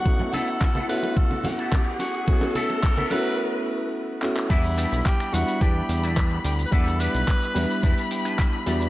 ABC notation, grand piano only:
X:1
M:4/4
L:1/8
Q:1/4=108
K:Edor
V:1 name="Grand piano"
[A,B,CEF]3 [A,B,CEF]4- [A,B,CEF] | [A,B,CEF]3 [A,B,CEF]4 [A,B,CEF] | [G,B,DEf]3 [G,B,DEf]4- [G,B,DEf] | [G,B,DEf]3 [G,B,DE]4 [G,B,DEF] |]